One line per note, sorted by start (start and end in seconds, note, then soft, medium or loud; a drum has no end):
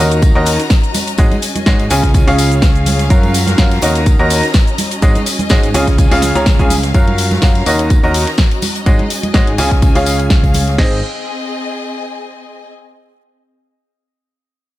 0.00 0.33 D#2 loud
0.00 0.32 D#3 medium
0.00 10.78 C#4 medium
0.00 0.32 D#4 medium
0.00 0.32 F#4 medium
0.00 2.14 F#4 medium
0.00 0.32 A#4 medium
0.00 0.32 C#5 medium
0.00 0.32 D#5 medium
0.00 0.38 F5 medium
0.00 1.43 A#5 medium
0.10 closed hi-hat soft
0.10 tambourine soft
0.10 shaker soft
0.22 kick loud
0.22 closed hi-hat medium
0.22 tambourine medium
0.22 shaker soft
0.35 0.56 D#2 medium
0.35 0.59 D#3 loud
0.35 0.59 D#4 medium
0.35 0.59 F#4 medium
0.35 0.59 A#4 medium
0.35 0.59 C#5 medium
0.35 0.59 D#5 loud
0.42 2.54 D#5 medium
0.42 tambourine medium
0.46 open hi-hat loud
0.46 tambourine medium
0.46 shaker medium
0.59 snare soft
0.59 closed hi-hat soft
0.59 tambourine soft
0.59 shaker soft
0.70 kick loud
0.70 snare loud
0.70 closed hi-hat medium
0.70 tambourine medium
0.70 shaker soft
0.84 closed hi-hat soft
0.84 shaker soft
0.94 open hi-hat loud
0.94 tambourine medium
0.94 high conga medium
0.94 shaker medium
1.07 closed hi-hat soft
1.07 tambourine soft
1.07 shaker soft
1.18 1.32 G#1 loud
1.18 1.34 G#3 medium
1.18 1.34 D#4 medium
1.18 1.34 F#4 medium
1.18 1.34 G#4 medium
1.18 1.34 C#5 medium
1.18 1.34 D#5 loud
1.18 kick loud
1.18 closed hi-hat medium
1.18 tambourine medium
1.18 tambourine soft
1.18 shaker soft
1.31 closed hi-hat soft
1.31 tambourine soft
1.31 high conga medium
1.42 3.40 G#5 medium
1.42 open hi-hat loud
1.42 tambourine medium
1.42 tambourine loud
1.42 shaker medium
1.56 closed hi-hat soft
1.56 tambourine soft
1.56 high conga medium
1.56 shaker soft
1.66 1.88 G#2 loud
1.66 1.82 G#3 medium
1.66 1.82 D#4 medium
1.66 1.82 F#4 medium
1.66 1.82 G#4 medium
1.66 1.82 C#5 medium
1.66 1.82 D#5 loud
1.66 kick loud
1.66 snare loud
1.66 closed hi-hat medium
1.66 tambourine medium
1.66 shaker soft
1.79 closed hi-hat medium
1.79 tambourine soft
1.90 2.25 C#2 loud
1.90 2.24 C#3 loud
1.90 2.24 C#4 medium
1.90 2.24 F4 medium
1.90 2.24 G#4 medium
1.90 2.24 C#5 medium
1.90 2.24 G#5 loud
1.90 open hi-hat loud
1.90 tambourine medium
1.90 tambourine loud
1.90 shaker medium
2.03 kick medium
2.03 snare medium
2.03 closed hi-hat medium
2.03 shaker soft
2.14 kick loud
2.14 closed hi-hat medium
2.14 tambourine medium
2.14 shaker soft
2.15 tambourine medium
2.27 3.08 C#2 medium
2.27 3.08 C#3 loud
2.27 3.08 C#4 medium
2.27 3.08 F4 medium
2.27 3.08 G#4 medium
2.27 3.08 C#5 medium
2.27 3.08 F5 loud
2.27 open hi-hat medium
2.36 4.22 F5 medium
2.36 open hi-hat loud
2.36 tambourine medium
2.36 shaker medium
2.49 3.40 G#4 medium
2.49 closed hi-hat soft
2.49 tambourine soft
2.49 shaker soft
2.62 kick loud
2.62 snare loud
2.62 closed hi-hat medium
2.62 tambourine loud
2.62 tambourine medium
2.62 shaker soft
2.75 closed hi-hat soft
2.75 shaker soft
2.86 open hi-hat loud
2.86 tambourine medium
2.86 high conga medium
2.86 shaker medium
2.99 snare soft
2.99 closed hi-hat soft
2.99 tambourine soft
2.99 shaker soft
3.10 3.56 F#2 loud
3.10 3.56 F#3 medium
3.10 3.56 F4 medium
3.10 3.56 F#4 medium
3.10 3.56 A#4 medium
3.10 3.56 C#5 medium
3.10 3.56 F5 loud
3.10 kick loud
3.10 closed hi-hat medium
3.10 tambourine medium
3.10 tambourine soft
3.10 shaker soft
3.23 closed hi-hat soft
3.23 tambourine soft
3.23 high conga medium
3.34 5.99 F#4 medium
3.34 open hi-hat loud
3.34 tambourine medium
3.34 shaker medium
3.43 5.26 A#5 medium
3.43 snare medium
3.43 high conga medium
3.48 closed hi-hat soft
3.48 tambourine soft
3.48 shaker soft
3.58 3.80 F#2 loud
3.58 3.80 F4 medium
3.58 3.80 F#4 medium
3.58 3.80 A#4 medium
3.58 3.80 C#5 medium
3.58 3.80 F5 medium
3.58 kick loud
3.58 snare loud
3.58 closed hi-hat medium
3.58 tambourine soft
3.58 tambourine medium
3.58 shaker soft
3.70 snare soft
3.70 closed hi-hat medium
3.70 tambourine soft
3.82 4.17 D#2 loud
3.82 4.16 D#3 medium
3.82 4.16 D#4 medium
3.82 4.16 F#4 medium
3.82 4.16 A#4 medium
3.82 4.16 C#5 medium
3.82 4.16 D#5 loud
3.82 snare loud
3.82 open hi-hat loud
3.82 tambourine medium
3.82 shaker medium
3.95 snare soft
3.95 closed hi-hat medium
3.95 tambourine soft
3.95 shaker soft
4.06 kick loud
4.06 closed hi-hat medium
4.06 tambourine medium
4.06 shaker soft
4.19 4.40 D#2 medium
4.19 4.43 D#3 medium
4.19 4.43 D#4 medium
4.19 4.43 F#4 medium
4.19 4.43 A#4 medium
4.19 4.43 C#5 medium
4.19 4.43 D#5 loud
4.26 6.38 D#5 medium
4.30 open hi-hat loud
4.30 tambourine medium
4.30 shaker medium
4.43 snare soft
4.43 closed hi-hat soft
4.43 tambourine soft
4.43 shaker soft
4.54 kick loud
4.54 snare loud
4.54 closed hi-hat medium
4.54 tambourine medium
4.54 tambourine soft
4.54 shaker soft
4.67 closed hi-hat soft
4.67 shaker soft
4.78 open hi-hat loud
4.78 tambourine medium
4.78 tambourine loud
4.78 high conga medium
4.78 shaker medium
4.91 closed hi-hat soft
4.91 tambourine soft
4.91 shaker soft
5.02 5.16 G#1 loud
5.02 5.18 G#3 medium
5.02 5.18 D#4 medium
5.02 5.18 F#4 medium
5.02 5.18 G#4 medium
5.02 5.18 C#5 medium
5.02 5.18 D#5 loud
5.02 kick loud
5.02 closed hi-hat medium
5.02 tambourine medium
5.02 shaker soft
5.15 closed hi-hat soft
5.15 tambourine soft
5.15 high conga medium
5.15 shaker soft
5.26 open hi-hat loud
5.26 tambourine medium
5.26 tambourine loud
5.26 shaker medium
5.33 7.24 G#5 medium
5.39 closed hi-hat soft
5.39 tambourine soft
5.39 high conga loud
5.39 shaker soft
5.49 5.72 G#2 loud
5.49 5.66 G#3 loud
5.49 5.66 D#4 medium
5.49 5.66 F#4 medium
5.49 5.66 G#4 medium
5.49 5.66 C#5 medium
5.49 5.66 D#5 loud
5.49 kick loud
5.49 snare loud
5.49 closed hi-hat medium
5.49 tambourine medium
5.49 shaker soft
5.63 closed hi-hat medium
5.63 tambourine soft
5.63 shaker soft
5.74 6.09 C#2 loud
5.74 6.08 C#3 loud
5.74 6.08 C#4 medium
5.74 6.08 F4 medium
5.74 6.08 G#4 medium
5.74 6.08 C#5 medium
5.74 6.08 G#5 loud
5.74 open hi-hat loud
5.74 tambourine medium
5.74 tambourine loud
5.74 shaker medium
5.87 kick medium
5.87 snare medium
5.87 closed hi-hat medium
5.87 tambourine soft
5.87 shaker soft
5.98 kick loud
5.98 closed hi-hat medium
5.98 tambourine medium
5.98 shaker soft
6.11 6.33 C#2 loud
6.11 6.33 C#3 loud
6.11 6.33 C#4 medium
6.11 6.33 F4 medium
6.11 6.33 G#4 medium
6.11 6.33 C#5 medium
6.11 6.33 F5 loud
6.11 open hi-hat medium
6.11 tambourine soft
6.22 snare medium
6.22 open hi-hat loud
6.22 tambourine medium
6.22 shaker medium
6.34 6.57 C#2 loud
6.34 6.56 C#3 medium
6.34 6.56 C#4 medium
6.34 6.56 F4 medium
6.34 7.24 G#4 medium
6.34 6.56 G#4 medium
6.34 6.56 C#5 medium
6.34 6.56 A#5 loud
6.34 snare soft
6.34 closed hi-hat soft
6.34 tambourine soft
6.34 shaker soft
6.42 8.06 F5 medium
6.42 snare loud
6.42 tambourine medium
6.46 kick loud
6.46 snare loud
6.46 closed hi-hat medium
6.46 tambourine soft
6.46 shaker soft
6.59 6.92 C#2 loud
6.59 6.73 C#3 medium
6.59 6.73 C#4 medium
6.59 6.73 F4 medium
6.59 6.73 G#4 medium
6.59 6.73 C#5 medium
6.59 6.73 G#5 medium
6.59 kick medium
6.59 closed hi-hat soft
6.59 tambourine soft
6.59 shaker soft
6.70 open hi-hat loud
6.70 tambourine medium
6.70 tambourine loud
6.70 high conga loud
6.70 shaker medium
6.83 snare medium
6.83 closed hi-hat soft
6.83 tambourine soft
6.83 shaker soft
6.94 7.40 F#2 loud
6.94 7.40 F#3 medium
6.94 7.40 F4 medium
6.94 7.40 F#4 medium
6.94 7.40 A#4 medium
6.94 7.40 C#5 medium
6.94 7.40 F5 loud
6.94 kick loud
6.94 closed hi-hat medium
6.94 tambourine medium
7.08 closed hi-hat soft
7.08 high conga medium
7.18 open hi-hat loud
7.18 tambourine medium
7.27 9.82 F#4 medium
7.27 9.10 A#5 medium
7.27 snare medium
7.27 closed hi-hat soft
7.27 tambourine soft
7.27 high conga loud
7.42 7.64 F#2 medium
7.42 7.64 F4 medium
7.42 7.64 F#4 medium
7.42 7.64 A#4 medium
7.42 7.64 C#5 medium
7.42 7.64 F5 medium
7.42 kick loud
7.42 snare loud
7.42 closed hi-hat medium
7.42 tambourine medium
7.55 snare soft
7.55 closed hi-hat medium
7.66 8.01 D#2 medium
7.66 8.00 D#3 medium
7.66 8.00 D#4 medium
7.66 8.00 F#4 medium
7.66 8.00 A#4 medium
7.66 8.00 C#5 medium
7.66 8.00 D#5 medium
7.66 open hi-hat loud
7.66 tambourine medium
7.79 closed hi-hat medium
7.79 tambourine soft
7.90 kick loud
7.90 closed hi-hat medium
7.90 tambourine soft
7.90 tambourine medium
8.03 8.24 D#2 medium
8.03 8.27 D#3 medium
8.03 8.27 D#4 medium
8.03 8.27 F#4 medium
8.03 8.27 A#4 medium
8.03 8.27 C#5 medium
8.03 8.27 D#5 loud
8.03 tambourine soft
8.10 10.21 D#5 medium
8.14 open hi-hat loud
8.14 tambourine medium
8.27 snare soft
8.27 closed hi-hat soft
8.27 tambourine soft
8.38 kick loud
8.38 snare loud
8.38 closed hi-hat medium
8.38 tambourine medium
8.51 closed hi-hat soft
8.51 tambourine soft
8.62 open hi-hat loud
8.62 tambourine medium
8.62 high conga loud
8.75 closed hi-hat soft
8.75 tambourine soft
8.86 9.00 G#1 loud
8.86 9.02 G#3 medium
8.86 9.02 D#4 medium
8.86 9.02 F#4 medium
8.86 9.02 G#4 medium
8.86 9.02 C#5 medium
8.86 9.02 D#5 loud
8.86 kick loud
8.86 closed hi-hat medium
8.86 tambourine medium
8.99 closed hi-hat soft
8.99 high conga medium
9.10 open hi-hat loud
9.10 tambourine medium
9.10 tambourine loud
9.17 10.78 G#5 medium
9.23 closed hi-hat soft
9.23 tambourine soft
9.23 high conga medium
9.34 9.56 G#2 loud
9.34 9.50 G#3 medium
9.34 9.50 D#4 medium
9.34 9.50 F#4 medium
9.34 9.50 G#4 medium
9.34 9.50 C#5 medium
9.34 9.50 D#5 loud
9.34 kick loud
9.34 snare loud
9.34 closed hi-hat medium
9.34 tambourine medium
9.47 closed hi-hat medium
9.58 9.93 C#2 loud
9.58 9.92 C#3 medium
9.58 9.92 C#4 medium
9.58 9.92 F4 medium
9.58 9.92 G#4 medium
9.58 9.92 C#5 medium
9.58 9.92 G#5 loud
9.58 open hi-hat loud
9.58 tambourine medium
9.71 kick medium
9.71 snare medium
9.71 closed hi-hat medium
9.71 tambourine soft
9.82 kick loud
9.82 closed hi-hat medium
9.82 tambourine medium
9.95 10.76 C#2 medium
9.95 10.76 C#3 medium
9.95 10.76 C#4 medium
9.95 10.76 F4 medium
9.95 10.76 G#4 medium
9.95 10.76 C#5 medium
9.95 10.76 F5 loud
9.95 open hi-hat medium
9.95 tambourine soft
10.06 open hi-hat loud
10.06 tambourine medium
10.06 tambourine loud
10.19 closed hi-hat soft
10.19 tambourine soft
10.26 10.78 G#4 medium
10.26 10.78 F5 medium
10.30 kick loud
10.30 snare loud
10.30 closed hi-hat medium
10.30 tambourine medium
10.30 tambourine loud
10.43 kick medium
10.43 closed hi-hat soft
10.43 tambourine soft
10.54 open hi-hat loud
10.54 tambourine medium
10.54 high conga medium
10.67 snare soft
10.67 closed hi-hat soft
10.67 tambourine soft
10.78 11.01 G#1 loud
10.78 12.66 C4 medium
10.78 10.97 C4 medium
10.78 10.97 D#4 medium
10.78 10.97 G#4 medium
10.78 10.97 C5 medium
10.78 10.97 D#5 medium
10.78 kick loud
10.78 snare loud
10.78 crash medium
10.86 12.66 G#4 medium
10.94 12.66 D#5 medium
11.00 12.66 G#5 medium